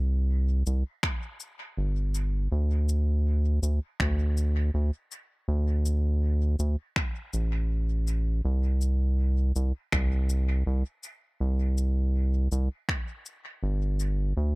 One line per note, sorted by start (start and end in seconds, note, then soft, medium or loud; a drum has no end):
0.00 0.63 C2 loud
0.66 0.84 C2 medium
0.66 shaker medium
1.03 finger snap medium
1.03 kick loud
1.40 shaker medium
1.77 2.48 G1 medium
2.14 shaker medium
2.52 3.59 D2 loud
2.89 shaker medium
3.62 3.80 D2 medium
3.62 shaker medium
4.00 4.71 D2 loud
4.00 finger snap loud
4.00 kick loud
4.37 shaker medium
4.74 4.91 D2 loud
5.12 shaker medium
5.48 6.56 D2 loud
5.85 shaker medium
6.59 6.76 D2 medium
6.59 shaker medium
6.96 finger snap loud
6.96 kick loud
7.33 8.41 A1 medium
7.33 shaker medium
8.07 shaker medium
8.45 9.52 C2 loud
8.81 shaker soft
9.56 9.72 C2 medium
9.56 shaker soft
9.92 10.63 C2 loud
9.92 finger snap medium
9.92 kick loud
10.29 shaker soft
10.67 10.83 C2 loud
11.03 shaker soft
11.40 12.48 C2 loud
11.78 shaker soft
12.52 12.69 C2 loud
12.52 shaker soft
12.89 finger snap medium
12.89 kick loud
13.26 shaker soft
13.63 14.33 G1 medium
14.00 shaker soft
14.37 14.55 D2 loud